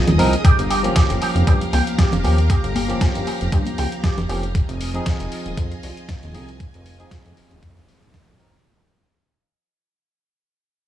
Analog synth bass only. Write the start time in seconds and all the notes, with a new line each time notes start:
0.07 D#1
0.19 C2
0.45 G1
0.59 G1
1.10 G1
1.35 F1
1.47 G2
1.73 C#2
2.12 F1
2.24 D#2
2.64 G1
3.15 G1
3.41 F1
3.52 G2
3.78 C#2
4.18 F1
4.29 F1
4.69 F1
5.20 F1
5.46 D#1
5.57 F2
5.83 C2
6.23 D#1
6.34 C2
6.74 F1
7.25 F1
7.51 D#1
7.63 F2
8.28 F2